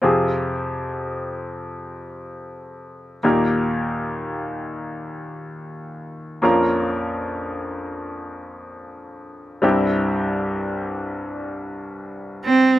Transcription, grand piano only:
0, 0, Header, 1, 2, 480
1, 0, Start_track
1, 0, Key_signature, -4, "minor"
1, 0, Tempo, 500000
1, 12279, End_track
2, 0, Start_track
2, 0, Title_t, "Grand piano"
2, 0, Program_c, 0, 0
2, 15, Note_on_c, 0, 60, 39
2, 25, Note_on_c, 0, 65, 40
2, 26, Note_on_c, 0, 48, 40
2, 27, Note_on_c, 0, 41, 40
2, 33, Note_on_c, 0, 67, 38
2, 43, Note_on_c, 0, 68, 42
2, 246, Control_c, 0, 64, 127
2, 3060, Note_off_c, 0, 60, 0
2, 3065, Note_off_c, 0, 48, 0
2, 3065, Note_off_c, 0, 65, 0
2, 3066, Note_off_c, 0, 41, 0
2, 3069, Note_off_c, 0, 67, 0
2, 3074, Note_off_c, 0, 68, 0
2, 3102, Note_on_c, 0, 58, 46
2, 3110, Note_on_c, 0, 63, 38
2, 3115, Note_on_c, 0, 39, 46
2, 3116, Note_on_c, 0, 46, 45
2, 3116, Note_on_c, 0, 67, 41
2, 3121, Control_c, 0, 64, 0
2, 3129, Note_on_c, 0, 70, 51
2, 3286, Control_c, 0, 64, 127
2, 6139, Note_off_c, 0, 58, 0
2, 6143, Note_off_c, 0, 63, 0
2, 6146, Note_off_c, 0, 39, 0
2, 6146, Note_off_c, 0, 46, 0
2, 6146, Note_off_c, 0, 67, 0
2, 6153, Note_off_c, 0, 70, 0
2, 6161, Note_on_c, 0, 58, 44
2, 6169, Note_on_c, 0, 61, 38
2, 6171, Note_on_c, 0, 41, 43
2, 6172, Note_on_c, 0, 34, 42
2, 6178, Note_on_c, 0, 65, 44
2, 6189, Note_on_c, 0, 70, 55
2, 6193, Control_c, 0, 64, 0
2, 6343, Control_c, 0, 64, 127
2, 9205, Note_off_c, 0, 58, 0
2, 9209, Note_off_c, 0, 61, 0
2, 9210, Note_off_c, 0, 34, 0
2, 9210, Note_off_c, 0, 41, 0
2, 9213, Note_off_c, 0, 65, 0
2, 9219, Note_off_c, 0, 70, 0
2, 9233, Note_on_c, 0, 55, 48
2, 9240, Note_on_c, 0, 60, 43
2, 9244, Note_on_c, 0, 43, 46
2, 9247, Note_on_c, 0, 36, 47
2, 9249, Note_on_c, 0, 64, 41
2, 9258, Note_on_c, 0, 67, 53
2, 9265, Control_c, 0, 64, 0
2, 9445, Control_c, 0, 64, 127
2, 12277, Note_off_c, 0, 55, 0
2, 12279, Note_off_c, 0, 36, 0
2, 12279, Note_off_c, 0, 43, 0
2, 12279, Note_off_c, 0, 60, 0
2, 12279, Note_off_c, 0, 64, 0
2, 12279, Note_off_c, 0, 67, 0
2, 12279, End_track
0, 0, End_of_file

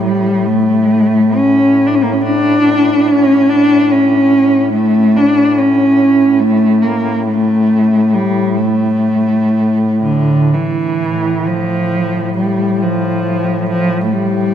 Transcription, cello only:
0, 0, Header, 1, 2, 480
1, 0, Start_track
1, 0, Tempo, 877193
1, 254, Time_signature, 4, 2, 24, 8
1, 1212, Tempo, 839161
1, 3612, Tempo, 863309
1, 4572, Tempo, 913242
1, 5052, Tempo, 975610
1, 6012, Tempo, 887574
1, 7927, End_track
2, 0, Start_track
2, 0, Title_t, "Cello"
2, 0, Program_c, 0, 42
2, 20, Note_on_c, 0, 55, 83
2, 254, Note_on_c, 0, 57, 83
2, 262, Note_off_c, 0, 55, 0
2, 741, Note_on_c, 0, 61, 82
2, 750, Note_off_c, 0, 57, 0
2, 1020, Note_on_c, 0, 62, 69
2, 1028, Note_off_c, 0, 61, 0
2, 1066, Note_on_c, 0, 61, 74
2, 1074, Note_off_c, 0, 62, 0
2, 1113, Note_on_c, 0, 58, 62
2, 1121, Note_off_c, 0, 61, 0
2, 1162, Note_on_c, 0, 61, 68
2, 1170, Note_off_c, 0, 58, 0
2, 1215, Note_on_c, 0, 62, 97
2, 1223, Note_off_c, 0, 61, 0
2, 1704, Note_on_c, 0, 61, 94
2, 1713, Note_off_c, 0, 62, 0
2, 1943, Note_on_c, 0, 62, 96
2, 1952, Note_off_c, 0, 61, 0
2, 2184, Note_on_c, 0, 61, 87
2, 2193, Note_off_c, 0, 62, 0
2, 2645, Note_off_c, 0, 61, 0
2, 2649, Note_on_c, 0, 57, 86
2, 2900, Note_on_c, 0, 62, 90
2, 2908, Note_off_c, 0, 57, 0
2, 3137, Note_on_c, 0, 61, 83
2, 3146, Note_off_c, 0, 62, 0
2, 3602, Note_on_c, 0, 57, 90
2, 3611, Note_off_c, 0, 61, 0
2, 3840, Note_on_c, 0, 58, 76
2, 3848, Note_off_c, 0, 57, 0
2, 4084, Note_off_c, 0, 58, 0
2, 4090, Note_on_c, 0, 57, 81
2, 4570, Note_on_c, 0, 55, 79
2, 4578, Note_off_c, 0, 57, 0
2, 4801, Note_on_c, 0, 57, 76
2, 4809, Note_off_c, 0, 55, 0
2, 5532, Note_off_c, 0, 57, 0
2, 5536, Note_on_c, 0, 50, 78
2, 5784, Note_on_c, 0, 52, 76
2, 5791, Note_off_c, 0, 50, 0
2, 6266, Note_on_c, 0, 53, 85
2, 6274, Note_off_c, 0, 52, 0
2, 6749, Note_off_c, 0, 53, 0
2, 6754, Note_on_c, 0, 55, 70
2, 6997, Note_on_c, 0, 53, 77
2, 7005, Note_off_c, 0, 55, 0
2, 7464, Note_off_c, 0, 53, 0
2, 7470, Note_on_c, 0, 53, 81
2, 7650, Note_off_c, 0, 53, 0
2, 7653, Note_on_c, 0, 57, 57
2, 7700, Note_on_c, 0, 55, 80
2, 7708, Note_off_c, 0, 57, 0
2, 7927, Note_off_c, 0, 55, 0
2, 7927, End_track
0, 0, End_of_file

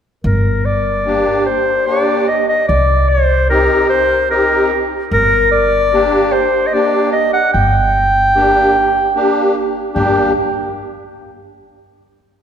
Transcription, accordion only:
0, 0, Header, 1, 2, 480
1, 0, Start_track
1, 0, Key_signature, -2, "minor"
1, 0, Tempo, 810811
1, 149, Time_signature, 3, 2, 24, 8
1, 4469, Tempo, 802139
1, 7387, End_track
2, 0, Start_track
2, 0, Title_t, "Accordion"
2, 0, Program_c, 0, 21
2, 626, Note_on_c, 0, 58, 67
2, 629, Note_on_c, 0, 62, 64
2, 629, Note_on_c, 0, 67, 73
2, 868, Note_off_c, 0, 58, 0
2, 869, Note_off_c, 0, 62, 0
2, 869, Note_off_c, 0, 67, 0
2, 1102, Note_on_c, 0, 58, 57
2, 1105, Note_on_c, 0, 62, 56
2, 1106, Note_on_c, 0, 67, 61
2, 1346, Note_off_c, 0, 58, 0
2, 1347, Note_off_c, 0, 62, 0
2, 1348, Note_off_c, 0, 67, 0
2, 2071, Note_on_c, 0, 63, 64
2, 2073, Note_on_c, 0, 60, 65
2, 2074, Note_on_c, 0, 67, 75
2, 2311, Note_off_c, 0, 63, 0
2, 2312, Note_off_c, 0, 60, 0
2, 2312, Note_off_c, 0, 67, 0
2, 2546, Note_on_c, 0, 60, 59
2, 2548, Note_on_c, 0, 63, 60
2, 2551, Note_on_c, 0, 67, 69
2, 2788, Note_off_c, 0, 60, 0
2, 2789, Note_off_c, 0, 63, 0
2, 2790, Note_off_c, 0, 67, 0
2, 3513, Note_on_c, 0, 58, 67
2, 3513, Note_on_c, 0, 62, 58
2, 3513, Note_on_c, 0, 67, 82
2, 3750, Note_off_c, 0, 58, 0
2, 3750, Note_off_c, 0, 62, 0
2, 3750, Note_off_c, 0, 67, 0
2, 3988, Note_on_c, 0, 58, 60
2, 3990, Note_on_c, 0, 62, 47
2, 3990, Note_on_c, 0, 67, 65
2, 4227, Note_off_c, 0, 58, 0
2, 4228, Note_off_c, 0, 62, 0
2, 4228, Note_off_c, 0, 67, 0
2, 4951, Note_on_c, 0, 58, 71
2, 4952, Note_on_c, 0, 67, 76
2, 4954, Note_on_c, 0, 62, 62
2, 5190, Note_off_c, 0, 58, 0
2, 5191, Note_off_c, 0, 67, 0
2, 5192, Note_off_c, 0, 62, 0
2, 5426, Note_on_c, 0, 58, 71
2, 5429, Note_on_c, 0, 62, 69
2, 5430, Note_on_c, 0, 67, 77
2, 5668, Note_off_c, 0, 58, 0
2, 5670, Note_off_c, 0, 62, 0
2, 5670, Note_off_c, 0, 67, 0
2, 5899, Note_on_c, 0, 62, 69
2, 5901, Note_on_c, 0, 67, 79
2, 5902, Note_on_c, 0, 58, 69
2, 6127, Note_off_c, 0, 62, 0
2, 6129, Note_off_c, 0, 58, 0
2, 6129, Note_off_c, 0, 67, 0
2, 7387, End_track
0, 0, End_of_file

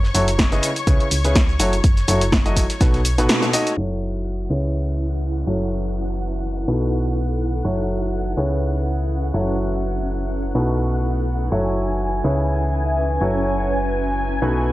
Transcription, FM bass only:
0, 0, Header, 1, 2, 480
1, 0, Start_track
1, 0, Tempo, 483871
1, 1825, Time_signature, 4, 2, 24, 8
1, 14605, End_track
2, 0, Start_track
2, 0, Title_t, "FM bass"
2, 0, Program_c, 0, 39
2, 0, Note_on_c, 0, 30, 101
2, 112, Note_off_c, 0, 30, 0
2, 143, Note_on_c, 0, 30, 101
2, 598, Note_off_c, 0, 30, 0
2, 864, Note_on_c, 0, 37, 81
2, 976, Note_off_c, 0, 37, 0
2, 1104, Note_on_c, 0, 37, 78
2, 1585, Note_on_c, 0, 30, 102
2, 1600, Note_off_c, 0, 37, 0
2, 1792, Note_off_c, 0, 30, 0
2, 1825, Note_on_c, 0, 30, 98
2, 2032, Note_off_c, 0, 30, 0
2, 2063, Note_on_c, 0, 30, 99
2, 2644, Note_off_c, 0, 30, 0
2, 2785, Note_on_c, 0, 35, 97
2, 3156, Note_on_c, 0, 33, 101
2, 3171, Note_off_c, 0, 35, 0
2, 3248, Note_off_c, 0, 33, 0
2, 3744, Note_on_c, 0, 30, 88
2, 4443, Note_off_c, 0, 30, 0
2, 4464, Note_on_c, 0, 37, 84
2, 5403, Note_off_c, 0, 37, 0
2, 5425, Note_on_c, 0, 30, 88
2, 6604, Note_off_c, 0, 30, 0
2, 6625, Note_on_c, 0, 35, 86
2, 7564, Note_off_c, 0, 35, 0
2, 7586, Note_on_c, 0, 30, 86
2, 8284, Note_off_c, 0, 30, 0
2, 8306, Note_on_c, 0, 37, 86
2, 9244, Note_off_c, 0, 37, 0
2, 9265, Note_on_c, 0, 30, 88
2, 10444, Note_off_c, 0, 30, 0
2, 10465, Note_on_c, 0, 35, 87
2, 11404, Note_off_c, 0, 35, 0
2, 11426, Note_on_c, 0, 30, 88
2, 12124, Note_off_c, 0, 30, 0
2, 12144, Note_on_c, 0, 37, 86
2, 13083, Note_off_c, 0, 37, 0
2, 13104, Note_on_c, 0, 30, 88
2, 14283, Note_off_c, 0, 30, 0
2, 14305, Note_on_c, 0, 35, 87
2, 14605, Note_off_c, 0, 35, 0
2, 14605, End_track
0, 0, End_of_file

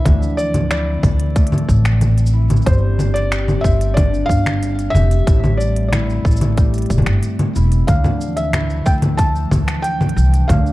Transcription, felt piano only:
0, 0, Header, 1, 2, 480
1, 0, Start_track
1, 0, Key_signature, -1, "minor"
1, 0, Tempo, 652174
1, 40, Time_signature, 4, 2, 24, 8
1, 7894, End_track
2, 0, Start_track
2, 0, Title_t, "Felt piano"
2, 0, Program_c, 0, 0
2, 0, Note_on_c, 0, 76, 106
2, 247, Note_off_c, 0, 76, 0
2, 274, Note_on_c, 0, 74, 98
2, 510, Note_off_c, 0, 74, 0
2, 521, Note_on_c, 0, 74, 88
2, 1691, Note_off_c, 0, 74, 0
2, 1960, Note_on_c, 0, 72, 92
2, 2310, Note_on_c, 0, 74, 110
2, 2331, Note_off_c, 0, 72, 0
2, 2650, Note_off_c, 0, 74, 0
2, 2657, Note_on_c, 0, 76, 98
2, 2899, Note_on_c, 0, 74, 94
2, 2916, Note_off_c, 0, 76, 0
2, 3133, Note_on_c, 0, 77, 118
2, 3157, Note_off_c, 0, 74, 0
2, 3609, Note_on_c, 0, 76, 127
2, 3641, Note_off_c, 0, 77, 0
2, 4102, Note_on_c, 0, 74, 88
2, 4119, Note_off_c, 0, 76, 0
2, 4319, Note_off_c, 0, 74, 0
2, 4330, Note_on_c, 0, 74, 79
2, 5516, Note_off_c, 0, 74, 0
2, 5795, Note_on_c, 0, 77, 93
2, 6157, Note_on_c, 0, 76, 89
2, 6168, Note_off_c, 0, 77, 0
2, 6519, Note_on_c, 0, 79, 98
2, 6529, Note_off_c, 0, 76, 0
2, 6573, Note_off_c, 0, 79, 0
2, 6752, Note_on_c, 0, 81, 102
2, 7207, Note_off_c, 0, 81, 0
2, 7230, Note_on_c, 0, 79, 99
2, 7686, Note_off_c, 0, 79, 0
2, 7711, Note_on_c, 0, 77, 87
2, 7894, Note_off_c, 0, 77, 0
2, 7894, End_track
0, 0, End_of_file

